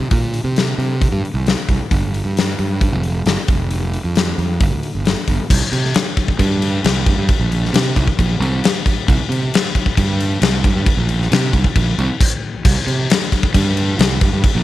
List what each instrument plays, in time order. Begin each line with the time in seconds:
0.11 fingered electric bass A#2, kick, open hi-hat
0.34 open hi-hat
0.44 fingered electric bass C3
0.56 snare, open hi-hat
0.78 fingered electric bass C3, open hi-hat
1.02 kick, open hi-hat
1.12 fingered electric bass G2
1.25 open hi-hat
1.34 fingered electric bass C2
1.47 snare, open hi-hat
1.69 fingered electric bass C2, kick, open hi-hat
1.91 fingered electric bass G1, kick, open hi-hat
2.14 open hi-hat
2.25 fingered electric bass G2
2.37 snare, open hi-hat
2.59 fingered electric bass G2, open hi-hat
2.81 kick, open hi-hat
2.92 fingered electric bass F1
3.03 open hi-hat
3.26 fingered electric bass G1, snare, open hi-hat
3.48 fingered electric bass F1, kick, open hi-hat
3.71 open hi-hat
3.93 open hi-hat
4.04 fingered electric bass F2
4.16 snare, open hi-hat
4.38 fingered electric bass F2, open hi-hat
4.60 fingered electric bass G1, kick, open hi-hat
4.72 fingered electric bass D2
4.83 open hi-hat
4.95 fingered electric bass G1
5.05 snare, open hi-hat
5.28 fingered electric bass G1, kick, open hi-hat
5.50 fingered electric bass C2, kick, crash
5.72 fingered electric bass C3, crash
5.85 snare
5.94 snare, crash
6.17 kick, crash
6.28 kick
6.39 fingered electric bass G2, kick, crash
6.62 crash
6.84 fingered electric bass C2, snare, crash
7.06 fingered electric bass G2, kick, crash
7.17 fingered electric bass G2
7.29 kick, crash
7.39 fingered electric bass A#1
7.52 crash
7.65 snare
7.73 fingered electric bass C3, snare, crash
7.96 fingered electric bass C2, kick, crash
8.07 kick
8.19 fingered electric bass A#1, kick, crash
8.40 fingered electric bass C2, crash
8.64 snare, crash
8.86 kick, crash
9.08 fingered electric bass C2, kick, crash
9.29 fingered electric bass C3, crash
9.54 snare, crash
9.75 kick, crash
9.86 kick
9.97 fingered electric bass G2, kick, crash
10.20 crash
10.41 fingered electric bass C2, snare, crash
10.64 fingered electric bass G2, kick, crash
10.75 fingered electric bass G2
10.86 kick, crash
10.97 fingered electric bass A#1
11.09 crash
11.22 snare
11.31 fingered electric bass C3, snare, crash
11.53 fingered electric bass C2, kick, crash
11.64 kick
11.76 fingered electric bass A#1, kick, crash
11.98 fingered electric bass C2, crash
12.21 kick, crash
12.65 fingered electric bass C2, kick, crash
12.87 fingered electric bass C3, crash
13.10 snare, crash
13.32 kick, crash
13.43 kick
13.54 fingered electric bass G2, kick, crash
13.77 crash
13.99 fingered electric bass C2, snare, crash
14.21 fingered electric bass G2, kick, crash
14.32 fingered electric bass G2
14.44 kick, crash
14.55 fingered electric bass A#1